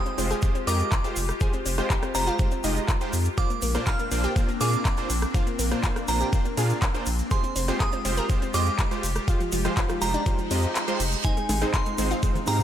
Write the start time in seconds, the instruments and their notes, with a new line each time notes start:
Already playing: supersaw synth G#3 F4 G4 C5, ambient pad G#3 F4 G4, synth bell D#6
0.06 synth pluck C4, closed hi-hat, shaker
0.18 sub bass F1, supersaw synth G#3 F4 G4 C5, synth pluck C4, open hi-hat, shaker
0.30 synth pluck G#4, closed hi-hat, shaker
0.42 supersaw synth G#3 F4 G4 C5, synth pluck C4, kick, closed hi-hat, shaker
0.55 synth pluck C4, closed hi-hat, shaker
0.67 sub bass F2, supersaw synth G#3 F4 G4 D#5, synth pluck A#4, synth bell D6, open hi-hat, shaker
0.80 closed hi-hat, shaker
0.92 kick, clap, closed hi-hat, shaker
1.04 supersaw synth G#3 F4 G4 C5, closed hi-hat, shaker
1.16 sub bass F1, open hi-hat, shaker
1.29 cross-stick, closed hi-hat, shaker
1.41 supersaw synth G#3 F4 G4 C5, synth pluck G#4, kick, closed hi-hat, shaker
1.53 synth pluck C4, closed hi-hat, shaker
1.66 sub bass F1, synth pluck C4, open hi-hat, shaker
1.78 supersaw synth G#3 F4 G4 C5, synth pluck C4, cross-stick, closed hi-hat, shaker
1.90 synth pluck G4, kick, clap, closed hi-hat, shaker
2.03 synth pluck C4, cross-stick, closed hi-hat, shaker
2.15 sub bass F1, supersaw synth G#3 F4 G4 C5, synth pluck C4, synth bell A#5, open hi-hat, shaker
2.27 synth pluck F4, closed hi-hat, shaker
2.39 supersaw synth G#3 F4 G4 C5, synth pluck C4, kick, closed hi-hat, shaker
2.51 synth pluck C4, closed hi-hat, shaker
2.64 sub bass F1, supersaw synth G#3 F4 G4 D#5, synth pluck D#4, open hi-hat, shaker
2.76 closed hi-hat, shaker
2.88 kick, clap, closed hi-hat, shaker
3.01 supersaw synth G#3 F4 G4 C5, closed hi-hat, shaker
3.13 sub bass F2, open hi-hat, shaker
3.25 closed hi-hat, shaker
3.38 supersaw synth A#2 A#3 D4 F4 C5, ambient pad A#3 C4 D4, synth pluck F4, synth bell D6, kick, closed hi-hat, ride, shaker
3.50 synth pluck A#3, closed hi-hat, shaker
3.62 sub bass A#1, synth pluck A#3, open hi-hat, ride, shaker
3.74 supersaw synth A#2 A#3 D4 F4 C5, synth pluck A#3, cross-stick, closed hi-hat, shaker
3.86 synth pluck F4, synth bell F6, kick, clap, closed hi-hat, ride, shaker
3.99 synth pluck A#3, closed hi-hat, shaker
4.11 sub bass A#1, supersaw synth A#2 A#3 D4 F4 C5, synth pluck A#3, open hi-hat, ride, shaker
4.24 synth pluck G4, closed hi-hat, shaker
4.36 supersaw synth A#2 A#3 D4 F4 C5, synth pluck A#3, kick, closed hi-hat, ride, shaker
4.48 synth pluck A#3, closed hi-hat, shaker
4.61 sub bass A#2, supersaw synth A#2 A#3 D4 F4 F5, synth pluck G#4, synth bell D6, open hi-hat, ride, shaker
4.73 closed hi-hat, shaker
4.85 kick, clap, closed hi-hat, ride, shaker
4.97 supersaw synth A#2 A#3 D4 F4 C5, closed hi-hat, shaker
5.10 sub bass A#1, open hi-hat, ride, shaker
5.22 cross-stick, closed hi-hat, shaker
5.34 supersaw synth A#2 A#3 D4 F4 C5, synth pluck F4, kick, closed hi-hat, ride, shaker
5.47 synth pluck A#3, closed hi-hat, shaker
5.59 sub bass A#1, synth pluck A#3, open hi-hat, ride, shaker
5.71 supersaw synth A#2 A#3 D4 F4 C5, synth pluck A#3, cross-stick, closed hi-hat, shaker
5.83 synth pluck F4, kick, clap, closed hi-hat, ride, shaker
5.96 synth pluck A#3, cross-stick, closed hi-hat, shaker
6.08 sub bass A#1, supersaw synth A#2 A#3 D4 F4 C5, synth pluck A#3, synth bell A#5, open hi-hat, ride, shaker
6.21 synth pluck G4, closed hi-hat, shaker
6.33 supersaw synth A#2 A#3 D4 F4 C5, synth pluck A#3, kick, closed hi-hat, ride, shaker
6.45 synth pluck A#3, closed hi-hat, shaker
6.57 supersaw synth A#2 A#3 D4 F4 F5, sub bass A#2, synth pluck G#4, open hi-hat, ride, shaker
6.70 closed hi-hat, shaker
6.82 kick, clap, closed hi-hat, ride, shaker
6.94 supersaw synth A#2 A#3 D4 F4 C5, closed hi-hat, shaker
7.06 sub bass A#1, open hi-hat, ride, shaker
7.19 closed hi-hat, shaker
7.31 supersaw synth G#3 F4 G4 C5, ambient pad G#3 F4 G4, synth pluck G#4, synth bell C6, kick, closed hi-hat, ride, shaker
7.44 synth pluck C4, closed hi-hat, shaker
7.56 sub bass F1, synth pluck C4, open hi-hat, ride, shaker
7.68 supersaw synth G#3 F4 G4 C5, synth pluck C4, cross-stick, closed hi-hat, shaker
7.80 synth pluck G#4, synth bell D#6, kick, clap, closed hi-hat, ride, shaker
7.92 synth pluck C4, closed hi-hat, shaker
8.05 sub bass F1, supersaw synth G#3 F4 G4 C5, synth pluck C4, open hi-hat, ride, shaker
8.17 synth pluck A#4, closed hi-hat, shaker
8.29 supersaw synth G#3 F4 G4 C5, synth pluck C4, kick, closed hi-hat, ride, shaker
8.42 synth pluck C4, closed hi-hat, shaker
8.54 sub bass F2, supersaw synth G#3 F4 G4 D#5, synth pluck C5, synth bell D6, open hi-hat, ride, shaker
8.67 closed hi-hat, shaker
8.79 kick, clap, closed hi-hat, ride, shaker
8.91 supersaw synth G#3 F4 G4 C5, closed hi-hat, shaker
9.03 sub bass F1, open hi-hat, ride, shaker
9.15 cross-stick, closed hi-hat, shaker
9.28 supersaw synth G#3 F4 G4 C5, ambient pad D#4, synth pluck F4, kick, closed hi-hat, ride, shaker
9.40 synth pluck F3, closed hi-hat, shaker
9.52 sub bass F1, synth pluck F3, open hi-hat, ride, shaker
9.65 synth pluck F3, supersaw synth G#3 F4 G4 C5, cross-stick, closed hi-hat, shaker
9.77 synth pluck F4, kick, clap, closed hi-hat, ride, shaker
9.89 synth pluck F3, cross-stick, closed hi-hat, shaker
10.02 sub bass F1, synth pluck F3, supersaw synth G#3 F4 G4 C5, synth bell A#5, open hi-hat, ride, shaker
10.14 synth pluck D4, closed hi-hat, shaker
10.26 synth pluck F3, supersaw synth G#3 F4 G4 C5, kick, closed hi-hat, ride, reverse cymbal, shaker
10.38 synth pluck F3, closed hi-hat, shaker
10.51 sub bass F2, supersaw synth G#3 F4 G4 D#5, synth pluck C4, open hi-hat, ride, shaker
10.62 closed hi-hat, shaker
10.75 clap, closed hi-hat, ride, shaker
10.88 supersaw synth G#3 F4 G4 C5, closed hi-hat, shaker
11.00 sub bass F1, open hi-hat, ride, shaker
11.12 closed hi-hat, shaker
11.24 supersaw synth G#2 G#3 C4 D#4 C5, ambient pad C4, synth pluck D#4, synth texture F4 F5, synth bell G#5, kick, closed hi-hat, ride, shaker
11.37 synth pluck G#3, closed hi-hat, shaker
11.49 sub bass G#1, synth pluck G#3, open hi-hat, ride, high bongo, shaker
11.62 supersaw synth G#2 G#3 C4 D#4 C5, synth pluck G#3, cross-stick, closed hi-hat, shaker
11.74 synth pluck D#4, synth bell C6, kick, clap, closed hi-hat, ride, shaker
11.86 synth pluck G#3, closed hi-hat, shaker
11.98 sub bass G#1, supersaw synth G#2 G#3 C4 D#4 C5, synth pluck G#3, open hi-hat, ride, high bongo, shaker
12.11 synth pluck F4, closed hi-hat, shaker
12.23 supersaw synth G#2 G#3 C4 D#4 C5, synth pluck G#3, kick, closed hi-hat, ride, shaker
12.35 synth pluck G#3, closed hi-hat, high conga, shaker
12.47 sub bass G#2, supersaw synth G#2 G#3 C4 D#4 F5, synth pluck G4, synth bell A#5, open hi-hat, ride, high bongo, shaker
12.59 closed hi-hat, low conga, shaker